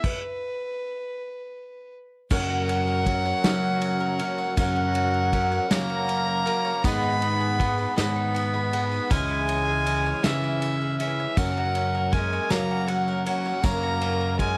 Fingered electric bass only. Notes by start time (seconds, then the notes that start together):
2.31 F#2
3.45 F#3
4.58 F#2
5.72 F#3
6.85 G#2
7.98 G#2
9.11 C#2
10.25 C#3
11.37 F#2
12.51 F#3
13.64 F#2